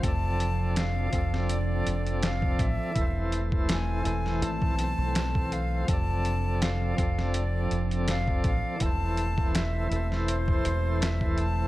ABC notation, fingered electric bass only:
X:1
M:4/4
L:1/16
Q:"Swing 16ths" 1/4=82
K:Am
V:1 name="Fingered electric bass" clef=bass
F,,,6 F,,,4 F,,,4 A,,, z | E,,,6 E,,,2 ^G,,,2 B,,, B,,,4- B,,, | F,,,6 F,,,4 F,,,4 A,,, z | E,,,6 E,,,4 E,,,6 |]